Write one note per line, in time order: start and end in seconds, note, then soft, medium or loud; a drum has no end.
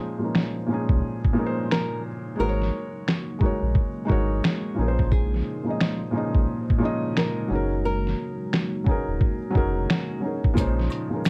0.00 0.18 A#2 medium
0.00 11.30 C#3 medium
0.00 0.20 F3 medium
0.00 0.21 G#3 medium
0.00 11.30 G#3 medium
0.00 11.30 A#3 medium
0.00 0.22 C#4 medium
0.00 0.24 D#4 medium
0.00 11.30 D#4 medium
0.00 0.52 G#4 medium
0.00 1.46 C5 medium
0.00 2.37 C5 medium
0.18 0.54 A#2 medium
0.18 0.55 F3 medium
0.18 0.56 G#3 medium
0.22 0.56 C#4 medium
0.22 0.57 D#4 medium
0.22 0.58 A#4 medium
0.35 finger snap medium
0.35 snare loud
0.66 1.16 A#2 medium
0.66 1.17 F3 medium
0.66 1.18 G#3 medium
0.71 1.19 C#4 medium
0.71 1.19 D#4 medium
0.71 1.20 G#4 medium
0.89 1.02 C2 loud
0.89 kick medium
1.25 kick medium
1.33 2.04 A#2 loud
1.33 2.05 F3 medium
1.33 2.06 G#3 medium
1.37 2.06 C#4 medium
1.37 2.07 D#4 medium
1.37 1.46 A#4 medium
1.46 2.11 C5 loud
1.71 2.02 A#4 medium
1.71 finger snap medium
1.71 snare loud
2.36 4.75 F#3 medium
2.36 3.07 G#3 medium
2.36 3.08 D#4 medium
2.36 3.09 F#4 medium
2.40 2.71 G#1 medium
2.40 3.25 A#4 loud
2.40 3.09 A#4 medium
2.40 2.49 C5 medium
2.49 3.14 C#5 loud
2.62 snare soft
3.08 finger snap medium
3.08 snare loud
3.39 3.89 G#3 medium
3.39 3.90 D#4 medium
3.39 3.91 F#4 medium
3.39 kick medium
3.44 3.92 A#4 medium
3.44 3.92 C#5 medium
3.63 3.75 A#1 medium
3.75 kick loud
4.05 4.56 G#3 medium
4.05 4.57 D#4 medium
4.05 4.58 F#4 loud
4.10 4.42 G#1 loud
4.10 4.59 A#4 medium
4.10 4.60 C#5 loud
4.10 kick medium
4.44 4.74 G#4 medium
4.44 finger snap medium
4.44 snare loud
4.74 5.44 A#2 medium
4.74 5.45 F3 medium
4.74 5.46 C#4 medium
4.74 7.47 C5 medium
4.79 5.42 A#1 loud
4.79 5.46 D#4 medium
4.79 5.47 G#4 medium
4.79 4.88 A#4 medium
4.88 5.51 C5 medium
4.99 kick medium
5.12 5.97 G#4 medium
5.12 kick loud
5.34 snare soft
5.63 6.00 A#2 medium
5.63 6.00 F3 medium
5.63 6.01 C#4 medium
5.63 6.02 D#4 medium
5.69 6.02 G#4 medium
5.69 6.03 D#5 medium
5.80 finger snap loud
5.80 snare loud
6.11 6.61 A#2 medium
6.11 6.62 F3 medium
6.11 6.63 C#4 medium
6.15 6.64 D#4 medium
6.15 6.64 G#4 medium
6.15 6.65 D#5 medium
6.34 6.47 A#1 medium
6.34 kick medium
6.70 kick loud
6.78 7.48 A#2 loud
6.78 7.49 F3 medium
6.78 7.49 C#4 medium
6.82 7.50 D#4 medium
6.82 7.51 G#4 medium
6.82 7.52 D#5 loud
7.17 7.48 A#4 medium
7.17 finger snap loud
7.17 snare loud
7.48 8.15 F#1 medium
7.48 8.60 F#3 medium
7.48 10.54 F#3 medium
7.48 8.61 C#4 medium
7.48 8.62 D#4 medium
7.54 8.63 G#4 medium
7.54 8.64 A#4 medium
7.85 8.70 A#4 medium
8.07 snare soft
8.53 finger snap medium
8.53 snare loud
8.84 9.34 F#3 medium
8.84 9.35 C#4 medium
8.84 9.36 D#4 medium
8.84 kick medium
8.89 9.37 G#4 medium
8.89 9.38 A#4 medium
9.08 9.20 D#1 medium
9.21 kick loud
9.50 10.02 F#3 loud
9.50 10.02 C#4 medium
9.50 10.03 D#4 medium
9.55 9.87 F1 loud
9.55 10.04 G#4 medium
9.55 10.05 A#4 loud
9.55 kick medium
9.90 10.20 F#4 medium
9.90 finger snap loud
9.90 snare loud
10.20 10.47 F#3 medium
10.20 10.48 C#4 medium
10.20 10.49 D#4 medium
10.25 10.50 G#4 medium
10.25 10.51 A#4 medium
10.44 kick loud
10.54 10.89 A#1 medium
10.54 10.90 A#2 loud
10.54 10.91 F3 medium
10.54 10.91 G#3 medium
10.54 kick loud
10.54 shaker medium
10.58 10.92 C#4 medium
10.58 10.93 D#4 medium
10.58 11.30 C5 medium
10.58 10.94 C5 medium
10.58 closed hi-hat medium
10.80 snare soft
10.90 closed hi-hat medium
10.90 high woodblock medium
10.90 shaker soft
11.09 11.30 A#2 medium
11.09 11.30 F3 medium
11.09 11.30 G#3 medium
11.13 11.30 C#4 medium
11.13 11.30 D#4 medium
11.13 11.30 A#4 medium
11.25 finger snap medium
11.25 snare loud
11.25 closed hi-hat medium
11.25 shaker medium